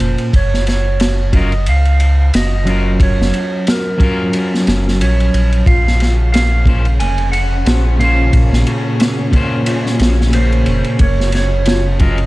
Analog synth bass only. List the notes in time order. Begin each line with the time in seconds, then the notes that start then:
0.00 F1
0.34 F#1
1.67 C#2
2.34 F#1
3.00 F#1
3.19 F#1
4.67 F#1
5.00 A#1
5.33 A#1
5.67 A#1
7.00 F1
7.66 A#1
8.33 A#1
8.52 A#1
10.00 A#1
10.66 F1
11.00 F#1